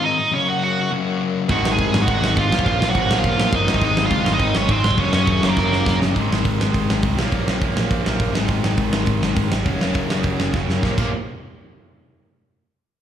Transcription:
Already playing: G#2 D#3 G#3 C4 D#4
0.03 D#4 D#5
0.32 F#2 C#3 F#3 A#3 C#4 C#5
0.48 F#4 F#5
0.63 F#4 F#5
0.90 F#2 C#3 F#3 A#3 C#4
1.49 G#1 G#2 D#3 G#3 C4 D#4 F#4 F#5, kick, crash
1.64 G#1, snare
1.72 G#4 G#5
1.78 F#1, kick, crash
1.93 G#1 G#2 D#3 G#3, snare
2.02 F#4 F#5
2.07 G#1 G#2 D#3 G#3 C4 D#4, kick, crash
2.22 G#1, snare
2.37 G#1 F4 F5, kick, crash
2.50 A#1 A#2 F3 A#3 C#4 F4, snare
2.59 kick
2.66 A#1 F4 F5, kick, crash
2.81 A#1, snare
2.89 F#4 F#5
2.95 G#1 A#2 F3 A#3, kick, crash
3.08 A#1 A#2 F3 A#3 C#4 F4, snare
3.18 F4 F5
3.24 A#1, kick, crash
3.39 A#1, snare
3.51 G1 A#2 F3 A#3, kick, crash
3.55 D#4 D#5
3.66 G#1 G#2 D#3 G#3 C4 D#4, snare
3.74 kick
3.81 G#1 D#4 D#5, kick, crash
3.97 G#1, snare
4.05 F4 F5
4.10 F#1 G#2 D#3 G#3, kick, crash
4.24 G#1 G#2 D#3 G#3 C4 D#4, snare
4.33 D#4 D#5
4.39 G#1, kick, crash
4.55 G#1 C#4 C#5, snare
4.68 G#1 G#2 D#3 G#3 C4 C5, kick, crash
4.84 G#1, snare
4.91 kick
4.97 F#1 F#2 C#3 F#3 A#3 C#4 C#5, kick, crash
5.13 F#1 C#4 C#5, snare
5.27 D#2, kick, crash
5.42 F#1 F#2 C#3 F#3 A#3 A#4, snare
5.56 F#1 F#2 C#3 F#3 A#3 C#4 A#4, kick, snare
5.71 F#1, snare
5.86 F#1, kick, snare
5.99 G1 F#2 C#3 F#3, snare
6.14 G#1 G#2 D#3 G#3 C4 D#4 G#4, kick, open hi-hat
6.31 G#1, snare
6.45 G#1, kick, open hi-hat
6.59 G#1 G#2 D#3 G#3, snare
6.74 G#1, kick, open hi-hat
6.90 G#1, snare
7.03 C2 G#2 D#3 G#3, kick, open hi-hat
7.17 A#1 A#2 F3 A#3 C#4 F4, snare
7.32 A#1, kick, open hi-hat
7.47 A#1, snare
7.61 A#1 A#2 F3 A#3, kick, open hi-hat
7.76 A#1, snare
7.91 A#1, kick, open hi-hat
8.05 A#1 A#2 F3 A#3, snare
8.20 A#1, kick, open hi-hat
8.33 G#1 G#2 D#3 G#3 C4 D#4, snare
8.48 G#1, kick, open hi-hat
8.63 G#1, snare
8.77 G#1 G#2 D#3 G#3, kick, open hi-hat
8.93 G#1, snare
9.06 G#1, kick, open hi-hat
9.21 G#1 G#2 D#3 G#3, snare
9.36 G#1, kick, open hi-hat
9.51 G#1, snare
9.64 F#1 F#2 C#3 F#3 A#3 C#4, kick, open hi-hat
9.81 F#1, snare
9.94 F#1, kick, open hi-hat
10.08 F#1 F#2 C#3 F#3, snare
10.23 F#1, kick, open hi-hat
10.40 F#1, snare
10.53 F#1 F#2 C#3 F#3, kick, snare
10.68 F#1, snare
10.82 A#1 A#2 F3 A#3 C#4, kick, snare
10.97 A#1 A#2 F3 A#3 C#4, kick, crash

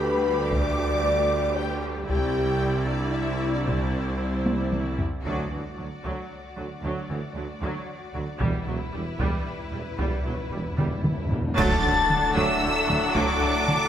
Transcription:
Already playing: D2 G3 G4 B4
0.00 B4 B5
0.51 D5 D6, taiko
1.55 G4 G5
2.07 C2 G3 E4 G4 D5 G5, taiko
2.86 D4 D5
3.13 E4 E5
3.53 D4 D5
3.66 C4 C5, taiko
4.46 taiko high
4.72 taiko mid
4.99 taiko low
5.22 D2 F#3 F#4 D5, taiko
5.26 D4 F#4
5.51 D2 E3
5.78 D2 F#3
6.04 D2 F#3, taiko
6.56 D2 F#3
6.83 D2 F#3 D4 F#4
7.10 D2 E3
7.36 D2 F#3
7.62 D2 F#3
8.14 D2 F#3
8.40 E1 E2 G3 B3 E4 G4 B4, taiko
8.67 E1 E2 F#3
8.79 E2
8.86 E2
8.94 E1 E2 G3
9.01 E2
9.08 E2
9.15 E2
9.19 E1 E2 G3, taiko
9.30 E2
9.36 E2
9.45 E2
9.52 E2
9.60 E2
9.68 E2
9.72 E1 E2 G3
9.84 E2
9.91 E2
9.98 E1 E2 G3 B3 G4, taiko
10.06 E2
10.13 E2
10.20 E2
10.25 E1 E2 F#3
10.35 E2
10.43 E2
10.49 E1 E2 G3
10.57 E2
10.64 E2
10.72 E2
10.77 E1 E2 G3, taiko mid
10.87 E2
10.94 E2
11.02 E2, taiko mid
11.11 E2
11.18 E2
11.25 E2
11.30 E1 E2 G3, taiko low
11.41 E2
11.48 E2
11.57 D2 A2 F#3 A3 D4 F#4 A4 F#5 A5 A6, concert bass drum, taiko, crash, impact
11.83 D2 D3
12.10 taiko mid
12.35 D2 F#3 E5 E6
12.62 D2 D3
12.88 D2 D3, taiko mid
13.14 D2 F#3 D5 D6, taiko
13.41 D2 D3
13.68 taiko mid

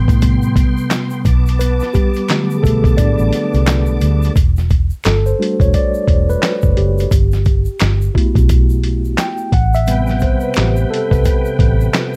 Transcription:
Already playing: C3 G3 B3 G5 C6
0.08 A2, kick, closed hi-hat, shaker
0.22 C3 G3 B3, kick, closed hi-hat, shaker
0.42 shaker
0.56 kick, closed hi-hat, shaker
0.77 shaker
0.91 finger snap, snare, clap, closed hi-hat, shaker
1.10 shaker
1.25 B1 A5 D6, kick, closed hi-hat, shaker
1.46 closed hi-hat, shaker
1.59 B3 B4, closed hi-hat, shaker
1.80 snare, shaker
1.94 G3 G4, kick, closed hi-hat, shaker
2.14 closed hi-hat, shaker
2.28 D3 F#3 A3, finger snap, snare, clap, closed hi-hat, shaker
2.50 shaker
2.57 G#4
2.63 B1 A3 A4, kick, closed hi-hat, shaker
2.84 B2, kick, closed hi-hat, shaker
2.97 A2 D4 D5, kick, closed hi-hat, shaker
3.19 A1, shaker
3.33 snare, closed hi-hat, shaker
3.53 C2, closed hi-hat, shaker
3.67 finger snap, snare, clap, closed hi-hat, shaker
3.86 B1, shaker
4.01 D2, closed hi-hat, shaker
4.22 closed hi-hat, shaker
4.36 E1, kick, closed hi-hat, shaker
4.57 snare, shaker
4.70 kick, closed hi-hat, shaker
4.90 shaker
5.04 G1 A4, finger snap, snare, clap, closed hi-hat, shaker
5.26 C5, shaker
5.39 G3 A3 D4 F#4, closed hi-hat
5.60 E1 C#5, kick, closed hi-hat, shaker
5.73 D5, kick, closed hi-hat, shaker
5.94 shaker
6.08 E1, kick, closed hi-hat
6.30 B4, shaker
6.43 finger snap, snare, clap, closed hi-hat, shaker
6.62 F#1, kick, shaker
6.77 F#1 G4, closed hi-hat
6.98 closed hi-hat, shaker
7.11 G1, kick, closed hi-hat, shaker
7.32 snare, shaker
7.45 kick, closed hi-hat, shaker
7.65 shaker
7.80 G1, finger snap, snare, clap, closed hi-hat, shaker
8.01 shaker
8.14 A3 B3 E4 F#4, kick, closed hi-hat
8.35 B1, kick, closed hi-hat, shaker
8.49 kick, closed hi-hat, shaker
8.70 shaker
8.84 closed hi-hat
9.05 shaker
9.18 G5, finger snap, snare, clap, closed hi-hat, shaker
9.38 shaker
9.52 A1 F#5, kick, closed hi-hat
9.74 E5, closed hi-hat, shaker
9.87 C3 G3 B3 B4 G5, closed hi-hat, shaker
10.07 snare, shaker
10.20 C5, kick, closed hi-hat, shaker
10.40 B4, shaker
10.54 A1 G4, finger snap, snare, clap, closed hi-hat, shaker
10.76 shaker
10.91 A4, closed hi-hat
11.11 C2 B4, kick, closed hi-hat, shaker
11.25 kick, closed hi-hat, shaker
11.45 shaker
11.59 A1, kick, closed hi-hat
11.81 shaker
11.94 finger snap, snare, clap, closed hi-hat, shaker

